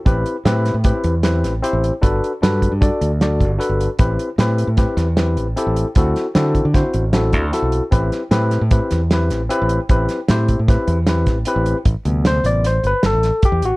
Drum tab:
HH |xxxxxxxxxx|xxxxxxxxxx|xxxxxxxxxx|xxxxxxxxxx|
SD |--oo--oo--|--o---o---|--o-ooo---|-oo-o-o-o-|
BD |o---o-----|o--oo--o--|o---o-----|o--oo--o--|

HH |xxxxxxxxxx|xxxxxxxxxx|xxxxxxxxxx|
SD |-ooo-ooo--|-oo-o-oo--|--o-o-oo--|
BD |o---o-----|o--oo--o--|o-------o-|